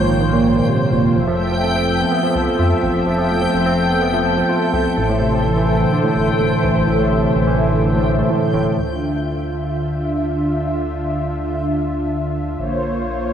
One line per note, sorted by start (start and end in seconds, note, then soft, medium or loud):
0.00 0.61 A#1 medium
0.00 1.17 G#2 medium
0.00 0.33 A#2 loud
0.00 1.18 C#3 medium
0.00 0.09 D#3 medium
0.00 1.16 F3 loud
0.00 1.12 A#3 medium
0.00 1.17 A#3 medium
0.00 1.12 F4 medium
0.00 1.12 C5 medium
0.00 1.12 C#5 medium
0.00 8.79 G5 medium
0.09 0.19 D#3 medium
0.21 0.31 D#3 medium
0.33 0.39 A#2 loud
0.56 0.67 A#2 medium
0.68 0.79 C3 loud
0.92 1.07 F1 loud
0.92 0.98 A#2 medium
1.16 2.04 F1 loud
1.16 4.93 F3 medium
1.16 1.26 F3 medium
1.16 8.74 A4 medium
1.16 4.93 E5 medium
1.28 1.34 F3 loud
1.40 1.46 A3 medium
1.52 1.63 F3 medium
1.64 1.74 C4 medium
1.75 1.82 C4 medium
1.99 2.10 B3 medium
2.11 2.21 B3 medium
2.23 2.29 F3 loud
2.35 2.50 C2 medium
2.47 2.58 F3 medium
2.59 2.73 F2 medium
2.59 2.69 F4 medium
2.83 2.90 A1 medium
2.83 2.93 C4 medium
2.95 3.02 F1 medium
3.06 3.47 F1 loud
3.06 3.17 F3 medium
3.18 3.24 F3 loud
3.30 3.36 A3 medium
3.42 3.53 F3 medium
3.54 4.42 F1 medium
3.54 3.65 C4 medium
3.66 3.72 C4 loud
3.90 4.00 B3 medium
4.02 4.12 B3 medium
4.14 4.20 F3 loud
4.37 4.49 F3 medium
4.49 4.60 F4 medium
4.73 4.88 C2 loud
4.73 4.83 C4 medium
4.97 5.85 A1 loud
4.97 5.07 A2 medium
4.97 8.74 A3 medium
4.97 8.74 C5 medium
4.97 8.74 E5 medium
5.09 5.15 A2 loud
5.21 5.27 C3 medium
5.33 5.44 A2 medium
5.45 5.55 E3 medium
5.56 5.63 E3 loud
5.80 5.91 D3 medium
5.92 6.02 D3 medium
6.04 6.10 A2 loud
6.16 6.31 G1 medium
6.28 6.39 A2 medium
6.40 6.54 E1 medium
6.40 6.50 A3 medium
6.64 6.71 C2 medium
6.64 6.74 E3 medium
6.76 6.83 A1 medium
6.87 7.28 A1 loud
6.87 6.98 A2 medium
6.99 7.05 A2 loud
7.11 7.17 C3 medium
7.23 7.34 A2 medium
7.35 8.23 A1 loud
7.35 7.46 E3 medium
7.47 7.53 E3 loud
7.71 7.81 D3 medium
7.83 7.93 D3 medium
7.95 8.01 A2 loud
8.18 8.30 A3 loud
8.30 8.36 A2 loud
8.54 8.69 E1 medium
8.54 8.60 A2 loud
8.78 12.56 D2 medium
8.78 12.55 D3 medium
8.78 12.55 D4 medium
8.78 12.55 F4 medium
8.78 12.55 E5 medium
12.59 13.33 A#1 medium
12.59 13.33 A#3 medium
12.59 13.33 F4 medium
12.59 13.33 C5 medium
12.59 13.33 C#5 medium